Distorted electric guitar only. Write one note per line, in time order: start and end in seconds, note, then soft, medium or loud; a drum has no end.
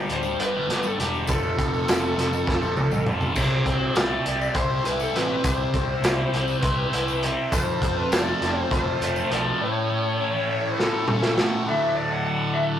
0.00 0.11 D3 medium
0.00 0.12 G3 medium
0.11 0.55 G2 medium
0.11 0.25 D3 medium
0.11 0.24 G3 medium
0.25 muted distorted electric guitar stroke soft
0.53 0.68 D3 medium
0.53 0.69 G3 medium
0.67 0.97 G2 medium
0.67 0.83 D3 medium
0.67 0.83 G3 medium
0.84 muted distorted electric guitar stroke soft
0.98 1.26 G2 medium
0.98 1.27 D3 medium
0.98 1.28 G3 loud
1.28 1.84 F2 medium
1.28 1.73 C3 medium
1.28 1.70 F3 medium
1.71 1.86 C3 soft
1.71 1.87 F3 medium
1.85 2.15 F2 medium
1.85 2.17 C3 medium
1.85 2.18 F3 loud
2.16 2.61 F2 medium
2.16 2.31 C3 medium
2.16 2.30 F3 medium
2.31 muted distorted electric guitar stroke soft
2.61 2.77 C3 medium
2.61 2.78 F3 medium
2.76 3.04 F2 medium
2.76 2.91 C3 medium
2.76 2.91 F3 medium
2.92 muted distorted electric guitar stroke soft
3.05 3.34 F2 medium
3.05 3.35 C3 medium
3.05 3.35 F3 medium
3.36 4.84 C3 medium
3.66 5.15 C4 medium
3.94 4.85 E4 medium
4.26 5.74 G4 medium
4.55 6.62 C5 medium
4.86 6.02 E4 medium
5.15 5.73 C4 medium
5.43 6.92 C3 medium
5.74 7.22 C4 medium
6.03 6.92 E4 medium
6.34 7.52 G4 medium
6.62 7.51 C5 medium
6.93 7.52 E4 medium
7.24 7.53 C4 medium
7.53 9.01 F2 medium
7.83 9.29 F3 medium
8.12 9.00 A3 medium
8.40 9.59 C4 medium
8.72 9.60 F4 medium
9.01 9.90 A3 medium
9.30 9.60 F3 medium
9.61 11.08 A2 medium
9.90 11.35 A3 medium
10.20 11.07 C#4 medium
10.49 11.67 E4 medium
10.79 11.68 A4 medium
11.08 11.67 C#4 medium
11.37 11.67 A3 medium
11.65 12.80 D2 medium
11.65 12.80 A2 medium
11.65 12.80 D3 medium